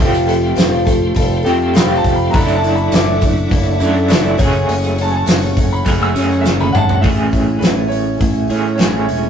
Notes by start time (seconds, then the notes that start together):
Already playing: G5
0.00 F1 F3 G3 A3 C4 F4 G4 A4 F5 C6
0.14 tambourine
0.27 F4 A4, open hi-hat
0.31 C4
0.44 tambourine
0.56 F1 F3 G3 C4 F4 A4, snare, open hi-hat, tambourine
0.73 tambourine
0.85 C4 F4 A4, kick, open hi-hat, tambourine
1.14 F1 G3 C4 F4 A4, kick, open hi-hat
1.19 tambourine
1.33 tambourine
1.43 F2 C4 F4 G4 A4, open hi-hat
1.47 F3 A3
1.62 tambourine
1.74 F1 F3 G3 A3 C4 F4 A4 B5, snare, open hi-hat, tambourine
1.78 G4
1.90 tambourine
1.96 A5
2.04 F1, kick, open hi-hat
2.16 B5
2.30 F#1 F#2 E3 F#3 A3 D4 E4 A4 E5 F#5 A#5 D6, kick
2.35 B5, open hi-hat, tambourine
2.48 tambourine
2.55 A5
2.62 A3 D4 E4 A4, open hi-hat
2.75 B5, tambourine
2.91 F#1 F#2 E3 A3 D4 E4 A4, snare, open hi-hat, tambourine
2.95 D6
3.21 A3 D4 E4 A4, kick, open hi-hat, tambourine
3.37 tambourine
3.49 F#1 A3 D4 E4 A4, kick, open hi-hat, tambourine
3.65 tambourine
3.79 F#2 A3 D4 E4 A4, open hi-hat, tambourine
3.83 F#3
3.95 tambourine
4.08 F#1 F#2 E3 F#3 A3 D4 E4 A4, snare, open hi-hat, tambourine
4.26 tambourine
4.37 F#1 F#2 C#3 F#3 A3 C#4 G#4 C#6, kick, open hi-hat, tambourine
4.41 G#4
4.69 F#1, open hi-hat, tambourine
4.84 tambourine
4.96 F#3 A3 C#4 G#4, open hi-hat, tambourine
5.01 A5
5.11 G#5
5.15 A5
5.26 F#1 F#2 C#3 F#3 A3 C#4 G#4, snare, open hi-hat, tambourine
5.42 tambourine
5.55 F#3 A3 C#4 G#4, kick, open hi-hat
5.71 B5, tambourine
5.85 F#1 F#2 C#3 F#3 A3 C#4 G#4, kick, open hi-hat, tambourine
6.01 E6, tambourine
6.15 F#2 C#3 F#3 A3 C#4 G#4, open hi-hat, tambourine
6.31 tambourine
6.41 F#1 F#2 C#3 E5
6.46 F#3 A3 C#4 G#4, snare, tambourine
6.60 B5, high tom, tambourine
6.73 G#1 F#5, mid tom, tambourine
6.77 A5
6.89 floor tom, tambourine
6.94 F#5
7.01 A1 A2 E3 A3 C#4 E4 G#4 E5, kick, open hi-hat
7.31 C#4 E4 G#4, kick, open hi-hat
7.59 A1 A3 C#4 B4, open hi-hat
7.63 E4 G#4, snare
7.88 E4 G#4 C#5, open hi-hat
7.93 C#4
8.18 A1 A3 C#4 E4 G#4, kick, open hi-hat
8.48 A2 A3 C#4 E4 G#4, open hi-hat
8.52 A2 E3
8.75 A2 E3 A3 C#4 C#5, open hi-hat
8.79 A1 E4 G#4, snare
9.05 E1 C#5, open hi-hat